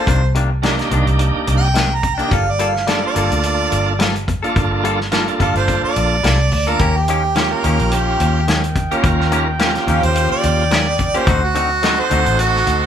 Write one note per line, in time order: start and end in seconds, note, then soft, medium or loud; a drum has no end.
0.00 0.34 C5 medium
0.07 0.80 C2 medium
0.07 0.23 C3 medium
0.07 0.23 D#3 medium
0.07 0.22 A#3 medium
0.07 0.22 D4 medium
0.07 kick loud
0.07 closed hi-hat medium
0.23 muted clean electric guitar stroke soft
0.35 0.51 C3 medium
0.35 0.51 D#3 medium
0.35 0.50 A#3 medium
0.35 0.50 D4 medium
0.35 closed hi-hat medium
0.51 muted clean electric guitar stroke soft
0.62 0.79 C3 medium
0.62 0.79 D#3 medium
0.62 0.75 A#3 loud
0.62 0.78 A#3 loud
0.62 0.75 D4 medium
0.62 0.78 D4 medium
0.62 0.75 D#4 medium
0.62 0.76 G4 loud
0.62 snare medium
0.62 closed hi-hat medium
0.78 1.68 A#3 medium
0.78 1.68 D4 medium
0.78 1.68 D#4 medium
0.78 1.68 G4 medium
0.78 muted clean electric guitar stroke soft
0.78 snare soft
0.78 closed hi-hat soft
0.91 1.05 C2 medium
0.91 1.07 C3 medium
0.91 1.07 D#3 medium
0.91 1.07 A#3 medium
0.91 1.06 D4 medium
0.91 closed hi-hat medium
1.07 1.31 C2 medium
1.07 muted clean electric guitar stroke soft
1.07 closed hi-hat soft
1.19 muted clean electric guitar stroke soft
1.19 closed hi-hat medium
1.35 muted fingered electric bass stroke soft
1.47 2.21 C2 medium
1.47 muted clean electric guitar stroke soft
1.47 closed hi-hat medium
1.57 1.96 G5 loud
1.74 1.91 C3 medium
1.74 1.90 D#3 medium
1.74 1.90 A#3 medium
1.74 1.89 D4 medium
1.74 snare loud
1.74 closed hi-hat medium
1.90 muted clean electric guitar stroke soft
1.95 2.16 A#5 medium
2.02 muted clean electric guitar stroke soft
2.02 kick medium
2.02 closed hi-hat medium
2.14 2.31 D4 medium
2.14 2.35 G5 medium
2.19 2.30 D#3 soft
2.19 2.31 A#3 medium
2.19 2.30 A#3 soft
2.19 2.31 D4 medium
2.19 2.31 D#4 medium
2.19 2.32 G4 medium
2.19 closed hi-hat soft
2.31 3.05 G1 loud
2.31 2.47 G3 medium
2.31 2.47 A#3 medium
2.31 2.46 F4 medium
2.31 2.45 A4 medium
2.31 2.53 F5 loud
2.31 kick loud
2.31 closed hi-hat medium
2.47 muted clean electric guitar stroke soft
2.52 2.71 D5 medium
2.59 2.75 G3 medium
2.59 2.75 A#3 medium
2.59 2.74 F4 medium
2.59 2.74 A4 medium
2.59 closed hi-hat medium
2.69 2.89 F5 medium
2.75 muted clean electric guitar stroke soft
2.75 snare soft
2.87 3.03 G3 medium
2.87 3.00 A#3 medium
2.87 3.03 A#3 medium
2.87 3.00 D4 medium
2.87 3.00 F4 medium
2.87 3.02 F4 medium
2.87 3.00 A4 medium
2.87 3.01 A4 medium
2.87 3.06 D5 medium
2.87 snare medium
2.87 closed hi-hat medium
3.03 3.93 A#3 medium
3.03 3.93 D4 medium
3.03 3.93 F4 medium
3.03 3.93 A4 medium
3.03 4.15 D5 loud
3.03 muted clean electric guitar stroke soft
3.15 3.29 G1 loud
3.15 3.31 G3 medium
3.15 3.31 A#3 medium
3.15 3.31 F4 medium
3.15 3.30 A4 medium
3.15 closed hi-hat medium
3.31 3.67 D2 medium
3.31 muted clean electric guitar stroke medium
3.31 closed hi-hat soft
3.43 muted clean electric guitar stroke soft
3.43 closed hi-hat medium
3.71 4.45 G1 loud
3.71 muted clean electric guitar stroke soft
3.71 closed hi-hat medium
3.99 4.15 G3 medium
3.99 4.16 A#3 medium
3.99 4.15 F4 medium
3.99 4.14 A4 medium
3.99 snare loud
3.99 closed hi-hat medium
4.15 muted clean electric guitar stroke soft
4.15 closed hi-hat soft
4.28 muted clean electric guitar stroke soft
4.28 kick medium
4.28 closed hi-hat medium
4.43 5.00 A#3 medium
4.43 4.60 A#3 soft
4.43 5.00 D4 medium
4.43 5.00 F4 medium
4.43 4.59 F4 soft
4.43 4.59 A4 medium
4.43 5.00 A4 medium
4.43 closed hi-hat soft
4.56 5.29 G1 medium
4.56 kick loud
4.56 closed hi-hat medium
4.71 muted clean electric guitar stroke medium
4.84 4.99 G3 medium
4.84 5.00 A#3 medium
4.84 4.99 F4 loud
4.84 4.99 A4 loud
4.84 closed hi-hat medium
5.00 muted clean electric guitar stroke soft
5.00 snare soft
5.11 5.28 G3 medium
5.11 5.24 A#3 loud
5.11 5.28 A#3 medium
5.11 5.24 D4 medium
5.11 5.24 F4 medium
5.11 5.27 F4 medium
5.11 5.26 A4 medium
5.11 5.24 A#4 loud
5.11 snare loud
5.11 closed hi-hat medium
5.27 6.17 A#3 medium
5.27 6.17 D4 medium
5.27 6.17 F4 medium
5.27 6.17 A4 medium
5.27 closed hi-hat soft
5.39 5.53 G1 medium
5.39 5.55 G3 medium
5.39 5.56 A#3 medium
5.39 5.55 F4 medium
5.39 5.54 A4 medium
5.39 5.55 F5 medium
5.39 kick medium
5.39 closed hi-hat medium
5.55 5.80 G1 medium
5.55 5.83 C5 medium
5.55 muted clean electric guitar stroke soft
5.55 closed hi-hat soft
5.68 muted clean electric guitar stroke soft
5.68 kick medium
5.68 closed hi-hat medium
5.84 6.70 D5 loud
5.84 muted fingered electric bass stroke soft
5.96 6.21 A#1 medium
5.96 muted clean electric guitar stroke soft
5.96 closed hi-hat medium
6.23 6.49 C2 medium
6.23 6.39 G3 medium
6.23 6.40 A#3 medium
6.23 6.39 F4 medium
6.23 6.38 A4 medium
6.23 snare loud
6.23 closed hi-hat medium
6.39 muted clean electric guitar stroke soft
6.52 6.77 D2 medium
6.52 muted clean electric guitar stroke soft
6.52 open hi-hat medium
6.67 6.80 A#3 medium
6.67 6.79 A#3 soft
6.67 6.80 D4 medium
6.67 6.80 F4 medium
6.67 6.81 F4 soft
6.67 6.80 A4 medium
6.67 6.99 A#4 medium
6.67 closed hi-hat soft
6.79 7.53 D#2 medium
6.79 6.95 D#3 medium
6.79 6.96 A#3 medium
6.79 6.96 C#4 medium
6.79 11.23 D#4 medium
6.79 6.95 G4 medium
6.79 11.23 A#4 medium
6.79 11.23 G5 medium
6.79 kick loud
6.79 closed hi-hat medium
6.96 7.54 G4 medium
6.96 muted clean electric guitar stroke soft
7.08 7.24 D#3 medium
7.08 7.24 A#3 medium
7.08 7.23 C#4 medium
7.08 7.22 G4 medium
7.08 closed hi-hat medium
7.24 muted clean electric guitar stroke soft
7.35 7.51 D#3 medium
7.35 7.48 A#3 medium
7.35 7.52 A#3 medium
7.35 7.48 C#4 medium
7.35 7.51 C#4 medium
7.35 7.48 F4 medium
7.35 7.48 G4 medium
7.35 7.50 G4 medium
7.35 snare loud
7.35 closed hi-hat medium
7.51 8.41 A#3 medium
7.51 8.41 C#4 medium
7.51 8.41 F4 medium
7.51 8.41 G4 medium
7.51 7.95 A#4 medium
7.51 muted clean electric guitar stroke soft
7.64 7.78 D#2 medium
7.64 7.79 D#3 medium
7.64 7.80 A#3 medium
7.64 7.79 C#4 medium
7.64 7.78 G4 medium
7.64 closed hi-hat medium
7.79 8.15 A#1 medium
7.79 muted clean electric guitar stroke soft
7.79 closed hi-hat soft
7.91 8.47 G4 loud
7.91 muted clean electric guitar stroke soft
7.91 closed hi-hat medium
8.20 8.93 D#2 medium
8.20 muted clean electric guitar stroke soft
8.20 closed hi-hat medium
8.48 8.63 D#3 medium
8.48 8.64 A#3 medium
8.48 8.63 C#4 medium
8.48 8.63 G4 medium
8.48 snare loud
8.48 closed hi-hat loud
8.64 muted clean electric guitar stroke soft
8.64 closed hi-hat soft
8.75 muted clean electric guitar stroke soft
8.75 kick medium
8.75 closed hi-hat medium
8.91 9.48 A#3 medium
8.91 9.08 A#3 medium
8.91 9.48 C#4 medium
8.91 9.08 C#4 medium
8.91 9.48 F4 medium
8.91 9.07 G4 medium
8.91 9.48 A#4 loud
8.91 closed hi-hat soft
9.04 9.76 D#2 loud
9.04 kick loud
9.04 closed hi-hat medium
9.20 muted clean electric guitar stroke soft
9.20 snare soft
9.32 9.47 D#3 medium
9.32 9.48 A#3 loud
9.32 9.47 C#4 loud
9.32 9.46 G4 loud
9.32 closed hi-hat medium
9.48 muted clean electric guitar stroke soft
9.59 9.75 D#3 medium
9.59 9.72 A#3 medium
9.59 9.75 A#3 medium
9.59 9.72 C#4 medium
9.59 9.75 C#4 loud
9.59 9.72 F4 medium
9.59 9.74 G4 medium
9.59 9.72 A#4 loud
9.59 snare loud
9.59 closed hi-hat medium
9.75 10.64 C#3 medium
9.75 10.64 A#3 medium
9.75 10.64 F4 medium
9.75 10.64 G4 medium
9.75 muted clean electric guitar stroke soft
9.75 snare soft
9.75 closed hi-hat soft
9.87 10.01 D#2 loud
9.87 10.03 D#3 medium
9.87 10.03 A#3 medium
9.87 10.03 C#4 medium
9.87 10.02 G4 medium
9.87 10.06 F5 medium
9.87 closed hi-hat medium
10.03 10.27 D#2 medium
10.03 10.31 C5 loud
10.03 muted clean electric guitar stroke medium
10.03 closed hi-hat soft
10.15 muted clean electric guitar stroke soft
10.15 closed hi-hat medium
10.32 11.18 D5 loud
10.32 muted fingered electric bass stroke soft
10.43 11.16 D#2 medium
10.43 muted clean electric guitar stroke soft
10.43 closed hi-hat medium
10.71 10.87 D#3 medium
10.71 10.87 A#3 medium
10.71 10.87 C#4 medium
10.71 10.86 G4 medium
10.71 snare loud
10.71 closed hi-hat medium
10.87 muted clean electric guitar stroke soft
10.99 muted clean electric guitar stroke soft
10.99 kick medium
10.99 closed hi-hat medium
11.14 11.27 A#3 medium
11.14 11.27 A#3 soft
11.14 11.27 C#4 medium
11.14 11.28 C#4 soft
11.14 11.27 F4 medium
11.14 11.27 G4 medium
11.14 11.46 C5 medium
11.14 closed hi-hat soft
11.27 12.00 D2 loud
11.27 11.43 D3 medium
11.27 11.43 C4 medium
11.27 11.42 D#4 medium
11.27 11.41 F#4 medium
11.27 12.86 C5 medium
11.27 12.86 D#5 medium
11.27 12.86 F#5 medium
11.27 kick loud
11.27 closed hi-hat medium
11.42 12.01 F#4 medium
11.42 muted clean electric guitar stroke soft
11.55 11.71 D3 medium
11.55 11.71 C4 medium
11.55 11.70 D#4 medium
11.55 11.69 F#4 medium
11.55 closed hi-hat medium
11.71 muted clean electric guitar stroke soft
11.82 11.99 D3 medium
11.82 11.95 C4 medium
11.82 11.99 C4 medium
11.82 11.95 D#4 medium
11.82 11.98 D#4 medium
11.82 11.95 F#4 medium
11.82 11.97 F#4 medium
11.82 11.96 A4 medium
11.82 snare loud
11.82 closed hi-hat medium
11.97 12.86 C4 medium
11.97 12.86 D#4 medium
11.97 12.86 F#4 medium
11.97 12.86 A4 medium
11.97 12.41 C5 loud
11.97 muted clean electric guitar stroke soft
12.10 12.25 D2 loud
12.10 12.26 D3 medium
12.10 12.26 C4 medium
12.10 12.26 D#4 medium
12.10 12.25 F#4 medium
12.10 closed hi-hat medium
12.26 12.62 A1 medium
12.26 muted clean electric guitar stroke soft
12.26 closed hi-hat soft
12.39 12.86 F#4 loud
12.39 muted clean electric guitar stroke soft
12.39 closed hi-hat medium
12.56 snare soft
12.67 12.86 D2 medium
12.67 muted clean electric guitar stroke soft
12.67 closed hi-hat medium